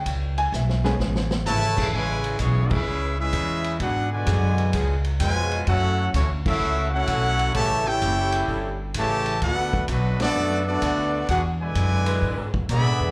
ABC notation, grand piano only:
X:1
M:4/4
L:1/8
Q:"Swing" 1/4=128
K:A
V:1 name="Grand piano"
=g ^g e g2 z3 | z8 | z8 | z8 |
z8 | z8 | z8 |]
V:2 name="Grand piano"
[G,B,C]3 [G,B,C] z4 | z8 | z8 | z8 |
z8 | z8 | z8 |]